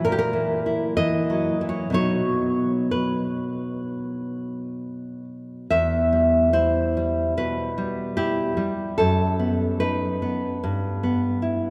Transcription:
0.05 A#2 A#4
0.12 G4
0.19 A#4
0.33 E3
0.66 E4
0.97 E3 D#5
1.30 F#3
1.61 E3
1.69 C#5
1.90 B2 F#3 D#4
1.94 C#5
2.91 B4
5.70 E2 E5
6.13 G3
6.53 E4 C5
6.97 G3
7.37 B2 B4
7.78 G3
8.17 E4 G4
8.57 G3
8.98 F#2 A4
9.39 B3
9.80 D#4 B4
10.22 B3
10.64 G2
11.03 B3
11.42 E4

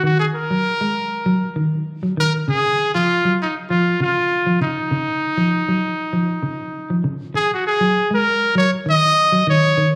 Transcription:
0.04 D#3 F#4
0.19 G#4
0.35 A#4
0.51 F#3
0.81 G#3
1.26 F#3
1.56 D#3
2.03 F#3
2.17 D#3 A#4
2.48 C#3 G#4
2.94 F3 F4
3.25 F#3
3.42 D#4
3.70 F3 F4
4.00 C#3 F4
4.46 F3
4.61 C#3 D#4
4.91 C#3
5.37 F3
5.69 F#3
6.13 F3
6.43 C#3
6.90 F3
7.04 C#3
7.34 G#4, muted clean electric guitar stroke
7.54 F#4
7.67 G#4
7.81 F#3
8.11 G#3 A#4
8.55 F#3 C#5
8.86 D#3
8.90 D#5
9.32 F#3
9.47 D#3 C#5
9.77 D#3

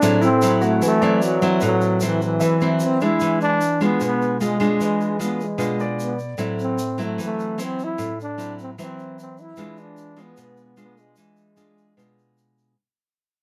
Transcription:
Already playing: D4 G#4
0.02 A2 F#3 C4 E4, shaker
0.21 C4 E4, shaker
0.36 A4
0.42 F#3 C4 E4, shaker
0.61 A3 F#4, shaker
0.82 E3 A3, shaker
1.01 F#3 C4 E4 D5, shaker
1.22 F#3, shaker
1.42 F#3 C4 E4, shaker
1.60 A2 B4, shaker
1.65 F#3
1.81 shaker
2.00 F#3 C4 E4, shaker
2.06 E3
2.22 E3, shaker
2.40 E3 E5, shaker
2.61 F#3 C4 E4, shaker
2.80 shaker
2.84 C4
3.00 G#3 D4 E4, shaker
3.20 E3, shaker
3.41 D4, shaker
3.61 shaker
3.81 G#3 B3 D4 F4, shaker
4.00 B2, shaker
4.05 B3
4.22 shaker
4.40 G#3 D4 F4, shaker
4.60 G#3 D4 F4, shaker
4.80 E3 G#3, shaker
5.01 shaker
5.19 G#3 D4 F4, shaker
5.23 B3
5.40 G#3, shaker
5.58 B2 G#3 D4 F4, shaker
5.80 D5, shaker
6.00 B3, shaker
6.19 shaker
6.38 A2 F#3 C4 E4, shaker
6.59 C4, shaker
6.78 shaker
6.98 F#3 C4 E4, shaker
7.03 A3
7.18 E3, shaker
7.24 A3
7.39 shaker
7.58 F#3 C4 E4, shaker
7.63 C4
7.79 shaker
7.84 E4
7.98 A2, shaker
8.20 D4, shaker
8.38 F#3 C4 E4, shaker
8.59 C4, shaker
8.78 E3 F#3 C4 E4, shaker
8.99 shaker
9.19 C4, shaker
9.38 E4, shaker
9.56 E3 G#3 D4 F4, shaker
9.77 D4, shaker
9.97 shaker
10.16 G#3 D4 F4, shaker
10.22 B3
10.37 B2, shaker
10.57 shaker
10.77 G#3 D4 F4, shaker
10.82 B3
10.98 G#3, shaker
11.16 E3 G#3, shaker
11.36 shaker
11.56 G#3 D4 F4, shaker
11.78 shaker
11.97 B2 G#3 D4 F4, shaker
12.19 shaker
12.38 shaker
12.58 shaker

